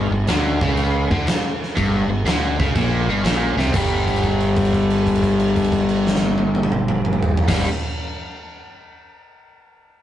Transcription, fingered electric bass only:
Already playing: G1
0.11 G1
0.27 D2
0.61 C#2
1.10 D2
1.77 G1
2.08 G1
2.25 D2
2.59 C#2
2.75 A#1
3.07 G1
3.24 A#1
3.57 C2
3.74 G1
7.48 G1

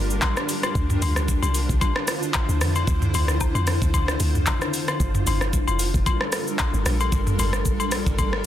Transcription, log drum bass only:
Already playing: G1
0.75 D2
1.02 D2
1.43 C2
1.69 C2
2.49 D2
2.61 F2
2.87 D2
3.14 D2
3.55 F2
3.82 D2
4.20 D2
5.00 G1
5.27 G1
5.68 F1
5.94 F1
6.74 G1
6.86 A#1
7.12 G1
7.39 G1
7.80 A#1
8.06 G1

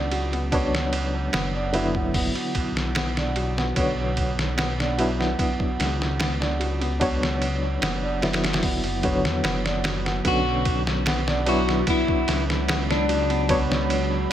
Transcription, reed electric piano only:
Already playing: F#3 B3 D4 E4
0.52 F#3 B3 D4 C#5
1.73 D3 F#3 B3 E4
3.75 D3 F#3 B3 C#5
4.98 F#3 B3 D4 E4
7.00 F#3 B3 D4 C#5
8.23 D3 F#3 B3 E4
9.03 D3 F#3 B3 C#5
10.25 D3 F#3 B3 C#4
11.46 F#3 B3 D4 E4
13.49 F#3 B3 D4 C#5

